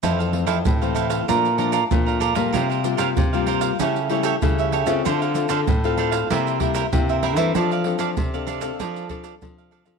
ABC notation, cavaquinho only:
X:1
M:4/4
L:1/16
Q:1/4=96
K:F
V:1 name="Cavaquinho"
[EAcf] [Acf]2 [EAcf] z [Acf] [EAcf] [Acf] [dfb]2 [Adfb] [Adfb] z [dfb] [Adfb] [dfb] | [FBcf] [Bcf]2 [FBcf] z [Bcf] [FBcf] [Bcf] [GA^ce]2 [GAce] [GAce] z [Ace] [GAce] [Ace] | [DAcf] [Acf]2 [DAcf] z [Acf] [DAcf] [Acf] [EBce]2 [EBce] [EBce] z [Bce] [EBce] [Bce] | [DAdf] [Adf]2 [DAdf] z [Adf] [DAdf] [Adf] [DAdf]2 [DAdf] [DAdf] z [Adf] [DAdf] [Adf] |]